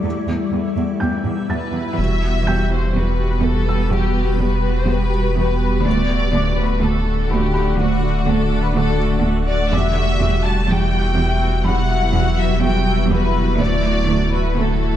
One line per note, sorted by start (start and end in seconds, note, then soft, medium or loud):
0.00 0.12 E2 soft
0.00 1.97 G3 medium
0.00 1.97 B3 medium
0.00 1.98 E4 medium
0.00 1.98 E5 medium
0.00 0.72 A6 soft
0.04 1.47 G3 soft
0.29 0.37 E2 soft
0.52 0.60 E2 soft
0.77 0.85 E2 soft
1.00 1.10 E2 soft
1.00 1.94 G5 soft
1.00 1.94 G6 soft
1.25 1.33 E2 soft
1.50 1.58 E2 soft
1.50 1.95 B4 soft
1.50 1.95 A6 soft
1.74 1.82 E2 soft
1.97 5.87 E1 medium
1.97 2.38 E2 soft
1.97 5.81 G3 medium
1.97 2.22 G3 soft
1.97 5.81 B3 medium
1.97 2.23 F#4 soft
1.97 5.81 G4 medium
1.97 5.82 B4 medium
1.97 2.71 E5 medium
2.23 2.45 G3 soft
2.23 2.45 F#4 soft
2.46 2.87 E2 soft
2.46 2.70 G3 soft
2.46 2.69 F#4 soft
2.46 3.88 G5 soft
2.46 3.88 G6 soft
2.71 2.93 G3 soft
2.71 2.93 F#4 soft
2.71 2.95 C5 soft
2.94 3.35 E2 soft
2.94 3.17 G3 soft
2.94 3.18 F#4 soft
2.94 3.44 B4 soft
3.18 3.42 G3 soft
3.18 3.42 F#4 soft
3.42 3.83 E2 soft
3.42 3.67 G3 soft
3.42 3.67 F#4 soft
3.42 3.92 A4 soft
3.68 3.90 G3 soft
3.68 3.89 F#4 soft
3.68 5.09 E6 soft
3.91 4.32 E2 soft
3.91 4.15 G3 soft
3.91 4.15 F#4 soft
3.91 4.39 G4 soft
4.16 4.38 G3 soft
4.16 4.39 F#4 soft
4.39 4.80 E2 soft
4.39 4.63 G3 soft
4.39 4.62 F#4 soft
4.39 4.76 B4 soft
4.64 4.87 G3 soft
4.64 4.87 F#4 soft
4.78 4.89 C5 soft
4.88 5.29 E2 soft
4.88 5.11 G3 soft
4.88 5.12 F#4 soft
4.88 5.36 B4 medium
5.13 5.36 G3 soft
5.13 5.37 F#4 soft
5.37 5.77 E2 soft
5.37 5.60 G3 soft
5.37 5.60 F#4 soft
5.37 5.84 B4 soft
5.61 5.85 G3 soft
5.61 5.84 F#4 soft
5.85 9.75 D1 medium
5.85 6.26 D2 soft
5.85 9.73 D3 medium
5.85 9.72 A3 medium
5.85 6.09 A3 soft
5.85 6.09 F#4 soft
5.85 6.58 D5 medium
5.85 9.72 D5 medium
5.85 9.69 F#5 medium
6.10 6.33 A3 soft
6.10 6.33 F#4 soft
6.34 6.75 D2 soft
6.34 6.57 A3 soft
6.34 6.57 F#4 soft
6.34 7.75 D6 soft
6.57 6.80 A3 soft
6.57 6.80 F#4 soft
6.57 6.82 B4 soft
6.81 7.23 D2 soft
6.81 7.05 A3 soft
6.81 7.06 F#4 soft
6.81 7.30 A4 soft
7.07 7.30 A3 soft
7.07 7.30 F#4 soft
7.29 7.72 D2 soft
7.29 7.55 A3 soft
7.29 7.55 F#4 soft
7.29 7.78 G4 medium
7.29 7.52 B5 soft
7.54 7.79 A3 soft
7.54 7.79 F#4 soft
7.54 8.95 B5 soft
7.78 8.20 D2 medium
7.78 8.03 A3 soft
7.78 8.26 F#4 medium
7.78 8.03 F#4 soft
8.04 8.27 A3 soft
8.04 8.26 F#4 soft
8.27 8.68 D2 soft
8.27 8.50 A3 soft
8.27 8.50 F#4 soft
8.27 8.63 A4 medium
8.51 8.75 A3 soft
8.51 8.74 F#4 soft
8.63 8.75 B4 medium
8.75 9.16 D2 medium
8.75 8.99 A3 soft
8.75 8.99 F#4 soft
8.75 9.23 A4 medium
9.00 9.24 A3 soft
9.00 9.24 F#4 soft
9.24 9.64 D2 medium
9.24 9.47 A3 soft
9.24 9.47 F#4 soft
9.47 9.72 A3 soft
9.47 9.71 F#4 soft
9.47 9.70 D5 medium
9.72 13.61 E1 medium
9.72 10.13 E2 medium
9.72 14.96 F#3 medium
9.72 9.96 G3 soft
9.72 13.60 B3 medium
9.72 14.96 E4 medium
9.72 9.96 F#4 soft
9.72 10.45 E5 medium
9.72 13.60 E5 medium
9.72 11.14 D6 soft
9.97 10.20 G3 soft
9.97 10.20 F#4 soft
10.21 10.61 E2 medium
10.21 10.44 G3 soft
10.21 10.44 F#4 soft
10.44 10.69 G3 soft
10.44 10.69 F#4 soft
10.44 10.69 A5 medium
10.69 11.10 E2 medium
10.69 10.91 G3 soft
10.69 10.91 F#4 soft
10.69 11.66 G5 medium
10.92 11.15 G3 soft
10.92 11.15 F#4 soft
11.16 11.58 E2 medium
11.16 11.40 G3 soft
11.16 11.40 F#4 soft
11.41 11.65 G3 soft
11.41 11.65 F#4 soft
11.64 12.07 E2 medium
11.64 11.88 G3 soft
11.64 11.88 F#4 soft
11.64 12.37 F#5 medium
11.64 13.06 B5 soft
11.90 12.13 G3 soft
11.90 12.13 F#4 soft
12.14 12.55 E2 medium
12.14 12.38 G3 soft
12.14 12.38 F#4 soft
12.37 12.62 G3 soft
12.37 12.62 F#4 soft
12.37 12.62 E5 medium
12.62 13.03 E2 medium
12.62 12.86 G3 soft
12.62 12.86 F#4 soft
12.62 13.10 G5 medium
12.88 13.10 G3 soft
12.88 13.10 F#4 soft
13.11 13.52 E2 medium
13.11 13.35 G3 soft
13.11 13.35 F#4 soft
13.11 13.59 B4 medium
13.36 13.60 G3 soft
13.36 13.59 F#4 soft
13.60 14.96 D1 medium
13.60 14.00 D2 medium
13.60 13.83 A3 soft
13.60 14.96 A3 medium
13.60 13.84 F#4 soft
13.60 14.96 D5 soft
13.60 14.33 D5 medium
13.60 14.96 D5 medium
13.84 14.07 A3 soft
13.84 14.08 F#4 soft
14.08 14.48 D2 medium
14.08 14.32 A3 soft
14.08 14.31 F#4 soft
14.32 14.56 A3 soft
14.32 14.56 F#4 soft
14.32 14.56 B4 medium
14.56 14.96 D2 medium
14.56 14.80 A3 soft
14.56 14.80 F#4 soft
14.56 14.96 A4 medium
14.81 14.96 A3 soft
14.81 14.96 F#4 soft